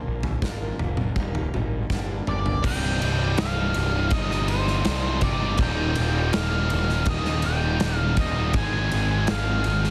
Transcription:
Already playing: steel-string acoustic guitar A#2 F3 A#3 D4 F4 A#4
0.07 picked electric bass A#1
0.23 floor tom
0.42 picked electric bass G#1, steel-string acoustic guitar A#2 F3 A#3 D4 F4 A#4, kick, snare
0.60 steel-string acoustic guitar A#3 D4 F4 A#4
0.79 picked electric bass F1, muted steel-string acoustic guitar stroke, floor tom
0.97 steel-string acoustic guitar A#3 D4 F4 A#4, mid tom
1.16 picked electric bass D#1, steel-string acoustic guitar D#2 A#2 D#3 G3 A#3 D#4, kick
1.35 steel-string acoustic guitar D#3 G3 A#3 D#4, floor tom
1.54 picked electric bass G#1, steel-string acoustic guitar D#3 G3 A#3 D#4, mid tom
1.89 picked electric bass G1, steel-string acoustic guitar G2 D3 G3 A#3 D4 G4, kick, snare
2.09 steel-string acoustic guitar G3 A#3 D4 G4
2.27 picked electric bass G1, steel-string acoustic guitar G3 A#3 D4 G4, lead electric guitar D5, mid tom
2.46 steel-string acoustic guitar G3 A#3 D4 G4, floor tom
2.64 picked electric bass C1, distorted electric guitar C2 G2 C3 G3 D#4, lead electric guitar G5, kick, crash
3.01 picked electric bass C1, distorted electric guitar G2 C3 G3 D#4, ride
3.20 distorted electric guitar C3 G3 D#4
3.37 picked electric bass C1, distorted electric guitar C2 G2 C3 G3 D#4, lead electric guitar F5, snare, ride
3.56 distorted electric guitar C3 G3 D#4
3.74 picked electric bass C1, distorted electric guitar G2 C3 G3 D#4, ride
3.94 distorted electric guitar C3 G3 D#4
4.10 picked electric bass G1, distorted electric guitar G2, lead electric guitar D#5, kick, ride
4.15 distorted electric guitar C3 G3 D#4
4.31 distorted electric guitar C3 G3 D#4, snare
4.48 distorted electric guitar G2 C3 G3, lead electric guitar C5, ride
4.52 distorted electric guitar D#4
4.67 distorted electric guitar D#4, snare
4.72 distorted electric guitar C3 G3
4.85 distorted electric guitar C2 G2 C3 G3 D#4, picked electric bass C2, snare, ride
5.04 distorted electric guitar C3 G3 D#4
5.21 picked electric bass G1, distorted electric guitar C2 G2 D#4, lead electric guitar D5, muted distorted electric guitar stroke, kick, ride
5.26 distorted electric guitar C3 G3 D#4
5.40 distorted electric guitar C3 G3 D#4
5.58 picked electric bass D#1, distorted electric guitar D#2 A#2 D#3 G3 A#3, lead electric guitar G5, kick, ride
5.62 distorted electric guitar D#4
5.95 picked electric bass D#1, distorted electric guitar D#3 G3 A#3 D#4, ride
6.14 distorted electric guitar D#3 G3 A#3 D#4
6.32 picked electric bass D#1, distorted electric guitar D#2 A#2 D#3 G3 A#3 D#4, lead electric guitar F5, snare, ride
6.52 distorted electric guitar D#3 G3 A#3 D#4
6.70 picked electric bass D#1, distorted electric guitar D#3 G3 A#3 D#4, ride
6.88 distorted electric guitar D#3 G3 A#3 D#4, snare
7.06 picked electric bass D#1, distorted electric guitar D#3, lead electric guitar D#5, kick, ride
7.10 distorted electric guitar G3 A#3 D#4
7.25 distorted electric guitar G3 A#3 D#4, snare
7.29 distorted electric guitar D#3
7.42 picked electric bass D#1, distorted electric guitar D#3 G3 A#3, lead electric guitar G5, ride
7.46 distorted electric guitar D#4
7.62 distorted electric guitar D#3 G3 A#3 D#4
7.80 picked electric bass D#1, distorted electric guitar D#2 A#2 D#3 G3 A#3 D#4, snare, ride
7.97 distorted electric guitar G3 A#3 D#4, lead electric guitar F5
8.01 distorted electric guitar D#3
8.17 picked electric bass D#1, distorted electric guitar D#2 A#2 D#3 G3 A#3, lead electric guitar D#5, muted distorted electric guitar stroke, kick, ride
8.21 distorted electric guitar D#4
8.36 distorted electric guitar D#3 G3 A#3 D#4
8.53 picked electric bass G#1, distorted electric guitar G#2 D#3 G#3 C4 D#4, lead electric guitar G#5, kick, ride
8.58 distorted electric guitar G#4
8.90 picked electric bass G#1, distorted electric guitar G#3 C4 D#4 G#4, ride
9.09 distorted electric guitar G#3 C4 D#4 G#4
9.26 picked electric bass G#1, distorted electric guitar G#2 D#3 G#3 C4 D#4 G#4, snare, ride
9.30 lead electric guitar F5
9.45 distorted electric guitar G#3 C4 D#4 G#4
9.64 picked electric bass G#1, distorted electric guitar G#3 C4 D#4 G#4, ride
9.83 distorted electric guitar G#3 C4 D#4 G#4, snare

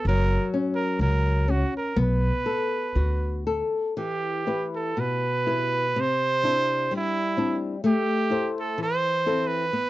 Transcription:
0.05 upright bass F#1, nylon-string guitar F#3, trumpet A#4
0.54 nylon-string guitar C#4
0.75 trumpet A#4
0.99 upright bass C#2, nylon-string guitar F#3, trumpet A#4
1.48 nylon-string guitar C#4, trumpet F#4
1.77 trumpet A#4
1.96 upright bass B1, nylon-string guitar B3
2.03 trumpet B4
2.46 nylon-string guitar A4
2.95 upright bass D2, nylon-string guitar F#4
3.47 nylon-string guitar A4
3.97 nylon-string guitar E3, trumpet G4
4.47 nylon-string guitar E4 G4 B4
4.75 trumpet A4
4.97 nylon-string guitar B2, trumpet B4
5.47 nylon-string guitar E4 G4 B4
5.96 nylon-string guitar C3
6.01 trumpet C5
6.43 nylon-string guitar C4 D4 E4
6.91 nylon-string guitar G3
6.96 trumpet E4
7.37 nylon-string guitar C4 D4 E4
7.84 nylon-string guitar A3, trumpet G4
8.30 nylon-string guitar E4 A4 C5
8.60 trumpet A4
8.78 nylon-string guitar E3
8.83 trumpet C5
9.26 nylon-string guitar C4 E4 A4
9.47 trumpet B4
9.73 nylon-string guitar B3

